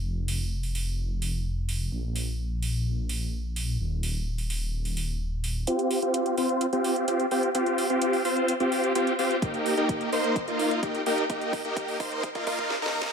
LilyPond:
<<
  \new Staff \with { instrumentName = "Supersaw synth" } { \time 4/4 \key ees \mixolydian \tempo 4 = 128 r1 | r1 | r1 | <c' f' g'>8. <c' f' g'>8. <c' f' c''>8 r16 <c' f' g'>8. <c' f' g'>8 <c' f' g'>8 |
<c' f' g'>8. <c' f' g'>8. <c' f' c''>8 r16 <c' f' g'>8. <c' f' g'>8 <c' f' g'>8 | <bes ees' g'>8. <bes ees' g'>8. <bes ees' c''>8 r16 <bes ees' f'>8. <bes g'>8 <bes ees' g'>8 | <bes ees' g'>8. <bes ees' g'>8. <bes ees' c''>8 r16 <bes ees' f'>16 <bes ees' f'>8 r16 <bes ees' bes'>8. | }
  \new Staff \with { instrumentName = "Detuned saw bass" } { \clef bass \time 4/4 \key ees \mixolydian f,,1 | bes,,1 | ees,,1 | r1 |
r1 | r1 | r1 | }
  \new DrumStaff \with { instrumentName = "Drums" } \drummode { \time 4/4 r8 hho8 r16 hho16 hho8 r8 hho8 r8 hho8 | r8 hho8 r8 hho8 r8 hho8 r8 hho8 | r8 hho8 r16 hho16 hho8 r16 hho16 hho8 r8 hho8 | hh16 hh16 hho16 hh16 hh16 hh16 hho16 hh16 hh16 hh16 hho16 hh16 hh16 hh16 hho16 hh16 |
hh16 hh16 hho16 hh16 hh16 hho16 hho16 hh16 hh16 hh16 hho16 hh16 hh16 hh16 hho16 hh16 | <hh bd>16 hh16 hho16 hh16 <hh bd>16 hh16 hho16 hh16 <hh bd>16 hh16 hho16 hh16 <hh bd>16 hh16 hho16 hh16 | <hh bd>16 hh16 <hho bd>16 hh16 <hh bd>16 hho16 <hho bd>16 hh16 <hh bd>16 <hh bd>16 <hho bd>16 <hh bd>16 \tuplet 3/2 { sn8 sn8 sn8 } | }
>>